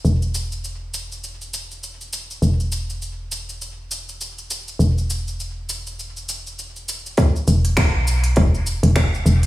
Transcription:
0.05 E1, shaker
0.22 shaker
0.34 shaker
0.52 shaker
0.64 shaker
0.94 shaker
1.12 shaker
1.24 shaker
1.41 shaker
1.54 shaker
1.71 shaker
1.83 shaker
2.01 shaker
2.13 shaker
2.30 shaker
2.42 E1, shaker
2.60 shaker
2.72 shaker
2.90 shaker
3.02 shaker
3.32 shaker
3.49 shaker
3.62 shaker
3.91 shaker
4.09 shaker
4.21 shaker
4.38 shaker
4.50 shaker
4.68 shaker
4.79 E1, shaker
4.98 shaker
5.10 shaker
5.28 shaker
5.40 shaker
5.69 shaker
5.87 shaker
5.99 shaker
6.17 shaker
6.29 shaker
6.47 shaker
6.59 shaker
6.76 shaker
6.89 shaker
7.06 shaker
7.17 kick, closed hi-hat, shaker
7.36 shaker
7.48 E1, shaker
7.65 closed hi-hat, shaker
7.77 finger snap, kick, closed hi-hat, shaker
7.95 B1
8.07 shaker
8.24 closed hi-hat, shaker
8.36 E1, kick, closed hi-hat, shaker
8.55 shaker
8.67 shaker
8.83 E1, closed hi-hat, shaker
8.96 finger snap, kick, closed hi-hat, shaker
9.14 shaker
9.26 E1, shaker
9.43 closed hi-hat

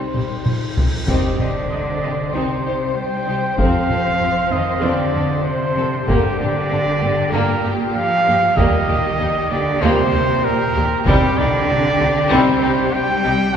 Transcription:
Already playing: G3 C4 D#4 C5, cymbal swell
0.14 C2 C3 C4 G4, taiko mid
0.45 F3, taiko mid
0.76 C2 C3 C4 G4, taiko low
1.06 C2 G2 C3 D#3 C4 D#4 G4 C5, taiko, impact
1.39 C2 D3 G4 D5 D#5, taiko mid
1.70 C2 D#4 D#5
2.01 C2 G4 D#5
2.32 C2 C3 D#3 C4 D#4 G4 C5
2.63 C2 D#4 G4
2.96 G3 G5
3.26 C2 D#4 G4
3.57 F2 C3 F3 C4 A4 F5, taiko
3.88 F2 C4 A4, taiko mid
4.20 F2 C4 F4
4.51 F2 D#3 C4 A4 D#5
4.82 F2 C3 D3 F3 C4 A4 D5
5.13 F2 C4 A4
5.46 C3 C5
5.76 F2 C4 A4
6.07 G2 D3 G3 A#3 G4, taiko
6.38 G2 D3 A#3 G4 D5, taiko mid
6.70 G2 A#3 D4
7.01 G2 A#3 G4
7.32 G2 A#2 D3 G3 A#3 G4 A#4
7.63 G2 A#3 G4
7.94 F3 F5
8.26 G2 A#3 G4
8.57 D#2 A#2 D#3 G3 A#3 G4 D#5, taiko
8.88 D#2 A#3 G4, taiko mid
9.20 D#2 A#3 D#4
9.50 D#2 D3 A#3 G4 D5
9.81 D#2 A#2 C3 G3 A#3 G4 C5
10.12 D#2 A#3 G4
10.44 A#2 A#4
10.74 D#2 A#3 G4
11.06 C2 G2 D#3 G3 C4 G4, taiko
11.37 C2 D3 C4 D#4 D5, taiko mid
11.69 C2 C4
12.00 C2 C4 D#4
12.30 C2 C3 D#3 G3 C4 G4 C5
12.62 C2 C4 D#4
12.93 G3 G5
13.24 C2 C4 D#4

